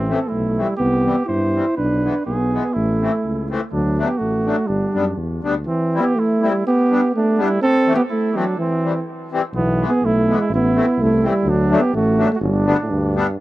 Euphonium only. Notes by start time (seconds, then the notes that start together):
Already playing: E3
0.14 C4
0.28 A3
0.61 G3
0.78 B3
1.26 E4
1.77 D4
2.26 B3
2.76 A3
3.73 F#3
4.03 B3
4.19 A3
4.66 G3
5.66 E3
6.00 B3
6.16 A3
6.50 G3
6.67 B3
7.15 A3
7.41 G3
7.62 C4
7.95 B3
8.12 A3
8.36 F#3
8.58 E3
9.56 E3
9.88 B3
10.05 A3
10.38 G#3
10.54 B3
11.01 A3
11.27 G3
11.48 F#3
11.79 B3
11.95 A3
12.32 A3
12.43 G3
12.68 D2
12.82 A2
12.90 G2